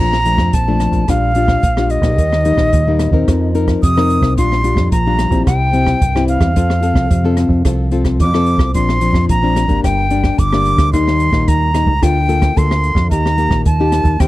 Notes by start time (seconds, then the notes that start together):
0.00 A#1 A#2 F3 A3 D4 A#5
0.13 cross-stick
0.25 F3 A3 D4, closed hi-hat
0.37 F2, kick, cross-stick
0.53 A#1 F2 A5, kick, closed hi-hat
0.68 F3 A3 D4
0.80 cross-stick, closed hi-hat
0.92 A#1, kick, closed hi-hat
1.08 A#1 A#2 G3 D4 F4 F5, kick, cross-stick, closed hi-hat
1.35 G3 D4 F4, closed hi-hat
1.48 kick, cross-stick
1.63 A#1 A#2, kick, closed hi-hat
1.77 G3 D4 F4, cross-stick
1.90 D#5, closed hi-hat
2.01 A#1 G3 A#3 D#4, kick, cross-stick, closed hi-hat
2.18 D#2 D#3, kick, closed hi-hat
2.32 cross-stick
2.45 G3 A#3 D#4, closed hi-hat
2.56 A#1, kick, cross-stick
2.73 D#2 A#2, kick, closed hi-hat
2.87 G3 A#3 D#4
2.99 cross-stick, closed hi-hat
3.11 D#2 C4 D#4 A#4, kick
3.28 F2 F3, kick, cross-stick, closed hi-hat
3.54 C4 D#4 A#4, closed hi-hat
3.68 kick, cross-stick, closed hi-hat
3.83 F2 C3 D#6, kick, closed hi-hat
3.97 C4 D#4 A#4, cross-stick
4.10 closed hi-hat
4.21 C2, kick, cross-stick
4.37 A#1 A#2 G3 D4 F4 C6, kick, closed hi-hat
4.52 cross-stick
4.64 G3 D4 F4, closed hi-hat
4.75 F2, kick, cross-stick
4.92 A#1 F3 A#5, kick, closed hi-hat
5.07 G3 D4 F4
5.19 cross-stick, closed hi-hat
5.30 A#1 G3 C4 E4, kick, closed hi-hat
5.47 C2 C3 G5, kick, cross-stick, closed hi-hat
5.73 G3 C4 E4, closed hi-hat
5.86 kick, cross-stick
6.01 C2 G2, kick, closed hi-hat
6.15 G3 C4 E4, cross-stick
6.28 F5, closed hi-hat
6.39 E2, kick, cross-stick, closed hi-hat
6.56 F2 F3 C4 F4 A4, kick, closed hi-hat
6.70 cross-stick
6.82 C4 F4 A4, closed hi-hat
6.94 C2, kick, cross-stick
7.11 F2 C3, kick, closed hi-hat
7.24 C4 F4 A4
7.37 cross-stick, closed hi-hat
7.49 F2, kick
7.65 C2 F3 C4 F4 A4, kick, cross-stick, closed hi-hat
7.91 C4 F4 A4, closed hi-hat
8.05 kick, cross-stick, closed hi-hat
8.20 F2 C3 D6, kick, closed hi-hat
8.34 C4 F4 A4, cross-stick
8.46 closed hi-hat
8.58 C2, kick, cross-stick
8.74 A#1 A#2 F3 C4 D4 C6, kick, closed hi-hat
8.89 cross-stick
9.01 F3 C4 D4, closed hi-hat
9.13 F2, kick, cross-stick
9.29 A#1 F3 A#5, kick, closed hi-hat
9.43 F3 C4 D4
9.56 cross-stick, closed hi-hat
9.67 G#1 G3 A#3 D4, kick, closed hi-hat
9.83 G1 G2 G5, kick, cross-stick, closed hi-hat
10.10 G3 A#3 D4, closed hi-hat
10.24 kick, cross-stick
10.38 G1 D3 D6, kick, closed hi-hat
10.53 G3 A#3 D4, cross-stick
10.65 closed hi-hat
10.77 D2, kick, cross-stick, closed hi-hat
10.93 D#2 D#3 G3 A#3 D#4 C6, kick, closed hi-hat
11.08 cross-stick
11.20 closed hi-hat
11.31 A#1 G3 A#3 D#4, kick, cross-stick
11.48 D#2 A#2 A#5, kick, closed hi-hat
11.74 G3 A#3 D#4, cross-stick, closed hi-hat
11.86 C#2, kick
12.02 D2 D3 A#3 F4 A4 G5, kick, cross-stick, closed hi-hat
12.28 A#3 F4 A4, closed hi-hat
12.42 kick, cross-stick, closed hi-hat
12.56 D2 D3 A#3 F4 A4 C6, kick, closed hi-hat
12.71 cross-stick
12.84 closed hi-hat
12.95 F2, kick, cross-stick
13.11 D#2 D#3 A#3 D#4 G4 A#5, kick, closed hi-hat
13.26 cross-stick
13.38 A#3 D#4 G4, closed hi-hat
13.49 A#1, kick, cross-stick
13.65 D#2 A5, kick, closed hi-hat
13.80 A#3 D#4 G4
13.92 cross-stick, closed hi-hat
14.04 D#2, kick, closed hi-hat
14.20 D#2 D#3 A#3 C4 G4 G5, kick, cross-stick, closed hi-hat